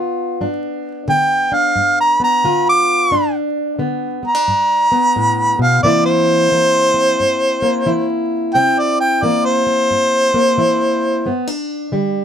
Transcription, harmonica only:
0, 0, Header, 1, 2, 480
1, 0, Start_track
1, 0, Tempo, 677966
1, 287, Time_signature, 4, 2, 24, 8
1, 8669, End_track
2, 0, Start_track
2, 0, Title_t, "Harmonica"
2, 0, Program_c, 0, 22
2, 779, Note_on_c, 0, 79, 89
2, 1092, Note_on_c, 0, 77, 78
2, 1103, Note_off_c, 0, 79, 0
2, 1401, Note_off_c, 0, 77, 0
2, 1419, Note_on_c, 0, 82, 89
2, 1569, Note_off_c, 0, 82, 0
2, 1584, Note_on_c, 0, 82, 85
2, 1887, Note_off_c, 0, 82, 0
2, 1906, Note_on_c, 0, 86, 85
2, 2364, Note_off_c, 0, 86, 0
2, 3027, Note_on_c, 0, 82, 85
2, 3950, Note_off_c, 0, 82, 0
2, 3976, Note_on_c, 0, 77, 77
2, 4123, Note_off_c, 0, 77, 0
2, 4127, Note_on_c, 0, 74, 95
2, 4284, Note_off_c, 0, 74, 0
2, 4288, Note_on_c, 0, 72, 97
2, 5700, Note_off_c, 0, 72, 0
2, 6048, Note_on_c, 0, 79, 100
2, 6226, Note_on_c, 0, 74, 84
2, 6237, Note_off_c, 0, 79, 0
2, 6372, Note_off_c, 0, 74, 0
2, 6377, Note_on_c, 0, 79, 86
2, 6541, Note_on_c, 0, 74, 75
2, 6552, Note_off_c, 0, 79, 0
2, 6693, Note_on_c, 0, 72, 89
2, 6704, Note_off_c, 0, 74, 0
2, 8100, Note_off_c, 0, 72, 0
2, 8669, End_track
0, 0, End_of_file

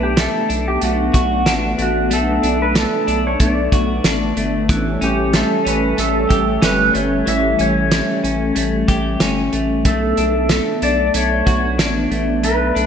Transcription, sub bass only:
0, 0, Header, 1, 2, 480
1, 0, Start_track
1, 0, Key_signature, 2, "minor"
1, 0, Tempo, 645161
1, 1568, Time_signature, 4, 2, 24, 8
1, 9571, End_track
2, 0, Start_track
2, 0, Title_t, "Sub bass"
2, 0, Program_c, 0, 38
2, 0, Note_on_c, 0, 35, 96
2, 207, Note_off_c, 0, 35, 0
2, 369, Note_on_c, 0, 35, 91
2, 580, Note_off_c, 0, 35, 0
2, 612, Note_on_c, 0, 35, 99
2, 822, Note_off_c, 0, 35, 0
2, 849, Note_on_c, 0, 35, 96
2, 1090, Note_on_c, 0, 33, 88
2, 1101, Note_off_c, 0, 35, 0
2, 1300, Note_off_c, 0, 33, 0
2, 1330, Note_on_c, 0, 33, 94
2, 1572, Note_on_c, 0, 35, 89
2, 1584, Note_off_c, 0, 33, 0
2, 1782, Note_off_c, 0, 35, 0
2, 1810, Note_on_c, 0, 35, 90
2, 2126, Note_off_c, 0, 35, 0
2, 2289, Note_on_c, 0, 35, 94
2, 2500, Note_off_c, 0, 35, 0
2, 2530, Note_on_c, 0, 35, 105
2, 2740, Note_off_c, 0, 35, 0
2, 2769, Note_on_c, 0, 35, 94
2, 2980, Note_off_c, 0, 35, 0
2, 3008, Note_on_c, 0, 33, 81
2, 3219, Note_off_c, 0, 33, 0
2, 3248, Note_on_c, 0, 31, 74
2, 3491, Note_on_c, 0, 33, 93
2, 3502, Note_off_c, 0, 31, 0
2, 3701, Note_off_c, 0, 33, 0
2, 3732, Note_on_c, 0, 33, 95
2, 4047, Note_off_c, 0, 33, 0
2, 4211, Note_on_c, 0, 33, 81
2, 4421, Note_off_c, 0, 33, 0
2, 4451, Note_on_c, 0, 33, 101
2, 4661, Note_off_c, 0, 33, 0
2, 4691, Note_on_c, 0, 33, 88
2, 4901, Note_off_c, 0, 33, 0
2, 4931, Note_on_c, 0, 31, 80
2, 5141, Note_off_c, 0, 31, 0
2, 5169, Note_on_c, 0, 31, 86
2, 5380, Note_off_c, 0, 31, 0
2, 5410, Note_on_c, 0, 33, 91
2, 5620, Note_off_c, 0, 33, 0
2, 5649, Note_on_c, 0, 33, 99
2, 5966, Note_off_c, 0, 33, 0
2, 6130, Note_on_c, 0, 33, 80
2, 6340, Note_off_c, 0, 33, 0
2, 6370, Note_on_c, 0, 33, 97
2, 6580, Note_off_c, 0, 33, 0
2, 6611, Note_on_c, 0, 33, 105
2, 6821, Note_off_c, 0, 33, 0
2, 6852, Note_on_c, 0, 31, 82
2, 7062, Note_off_c, 0, 31, 0
2, 7092, Note_on_c, 0, 33, 93
2, 7331, Note_on_c, 0, 35, 92
2, 7342, Note_off_c, 0, 33, 0
2, 7541, Note_off_c, 0, 35, 0
2, 7573, Note_on_c, 0, 35, 97
2, 7888, Note_off_c, 0, 35, 0
2, 8051, Note_on_c, 0, 35, 92
2, 8261, Note_off_c, 0, 35, 0
2, 8291, Note_on_c, 0, 35, 111
2, 8501, Note_off_c, 0, 35, 0
2, 8534, Note_on_c, 0, 35, 90
2, 8770, Note_on_c, 0, 33, 87
2, 8781, Note_off_c, 0, 35, 0
2, 8980, Note_off_c, 0, 33, 0
2, 9009, Note_on_c, 0, 33, 88
2, 9253, Note_on_c, 0, 35, 94
2, 9264, Note_off_c, 0, 33, 0
2, 9462, Note_off_c, 0, 35, 0
2, 9492, Note_on_c, 0, 35, 99
2, 9571, Note_off_c, 0, 35, 0
2, 9571, End_track
0, 0, End_of_file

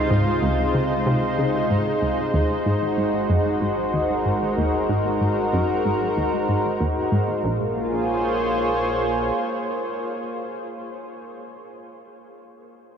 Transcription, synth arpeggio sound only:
0, 0, Header, 1, 2, 480
1, 0, Start_track
1, 0, Key_signature, -5, "minor"
1, 0, Tempo, 638298
1, 1758, Time_signature, 4, 2, 24, 8
1, 9758, End_track
2, 0, Start_track
2, 0, Title_t, "Synth arpeggio sound"
2, 0, Program_c, 0, 84
2, 79, Note_on_c, 0, 44, 93
2, 186, Note_off_c, 0, 44, 0
2, 319, Note_on_c, 0, 37, 94
2, 547, Note_off_c, 0, 37, 0
2, 561, Note_on_c, 0, 49, 71
2, 667, Note_off_c, 0, 49, 0
2, 800, Note_on_c, 0, 48, 91
2, 1027, Note_off_c, 0, 48, 0
2, 1040, Note_on_c, 0, 49, 72
2, 1218, Note_off_c, 0, 49, 0
2, 1282, Note_on_c, 0, 44, 70
2, 1388, Note_off_c, 0, 44, 0
2, 1520, Note_on_c, 0, 37, 69
2, 1698, Note_off_c, 0, 37, 0
2, 1760, Note_on_c, 0, 39, 91
2, 1867, Note_off_c, 0, 39, 0
2, 2001, Note_on_c, 0, 44, 88
2, 2228, Note_off_c, 0, 44, 0
2, 2240, Note_on_c, 0, 44, 70
2, 2347, Note_off_c, 0, 44, 0
2, 2480, Note_on_c, 0, 42, 92
2, 2707, Note_off_c, 0, 42, 0
2, 2719, Note_on_c, 0, 44, 76
2, 2898, Note_off_c, 0, 44, 0
2, 2960, Note_on_c, 0, 39, 72
2, 3067, Note_off_c, 0, 39, 0
2, 3199, Note_on_c, 0, 44, 69
2, 3378, Note_off_c, 0, 44, 0
2, 3439, Note_on_c, 0, 39, 94
2, 3546, Note_off_c, 0, 39, 0
2, 3679, Note_on_c, 0, 44, 90
2, 3907, Note_off_c, 0, 44, 0
2, 3920, Note_on_c, 0, 44, 68
2, 4027, Note_off_c, 0, 44, 0
2, 4160, Note_on_c, 0, 42, 92
2, 4387, Note_off_c, 0, 42, 0
2, 4402, Note_on_c, 0, 44, 68
2, 4579, Note_off_c, 0, 44, 0
2, 4640, Note_on_c, 0, 39, 74
2, 4747, Note_off_c, 0, 39, 0
2, 4878, Note_on_c, 0, 44, 68
2, 5057, Note_off_c, 0, 44, 0
2, 5117, Note_on_c, 0, 39, 90
2, 5225, Note_off_c, 0, 39, 0
2, 5356, Note_on_c, 0, 44, 90
2, 5585, Note_off_c, 0, 44, 0
2, 5596, Note_on_c, 0, 34, 83
2, 5820, Note_off_c, 0, 34, 0
2, 9758, End_track
0, 0, End_of_file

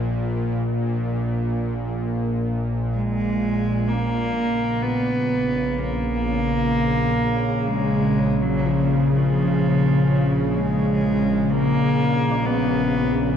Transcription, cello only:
0, 0, Header, 1, 2, 480
1, 0, Start_track
1, 0, Tempo, 500000
1, 12834, End_track
2, 0, Start_track
2, 0, Title_t, "Cello"
2, 0, Program_c, 0, 42
2, 2817, Note_on_c, 0, 56, 95
2, 3727, Note_on_c, 0, 58, 98
2, 3741, Note_off_c, 0, 56, 0
2, 4625, Note_on_c, 0, 59, 90
2, 4639, Note_off_c, 0, 58, 0
2, 5553, Note_on_c, 0, 58, 94
2, 5567, Note_off_c, 0, 59, 0
2, 7369, Note_on_c, 0, 56, 96
2, 7383, Note_off_c, 0, 58, 0
2, 8080, Note_on_c, 0, 54, 92
2, 8095, Note_off_c, 0, 56, 0
2, 8307, Note_on_c, 0, 53, 82
2, 8321, Note_off_c, 0, 54, 0
2, 8766, Note_off_c, 0, 53, 0
2, 8773, Note_on_c, 0, 53, 93
2, 10136, Note_on_c, 0, 56, 93
2, 10151, Note_off_c, 0, 53, 0
2, 11039, Note_on_c, 0, 58, 107
2, 11053, Note_off_c, 0, 56, 0
2, 11954, Note_on_c, 0, 59, 103
2, 11968, Note_off_c, 0, 58, 0
2, 12834, Note_off_c, 0, 59, 0
2, 12834, End_track
0, 0, End_of_file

